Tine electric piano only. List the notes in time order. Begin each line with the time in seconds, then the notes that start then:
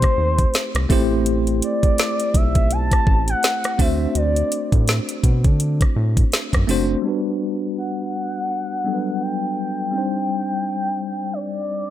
Already playing: A3 C4 D#4 G4 C5
0.89 A3 C4 E4 G4 C5
3.78 A3 C4 D4 F#4 C5
6.67 A3 C4 D4 F#4 C5
7.02 G3 B3 D4
7.07 F#4 B4
8.84 F#3 G3 B3 D4 A4
8.94 B4
9.91 G3 C4 D4
9.96 D#4 C5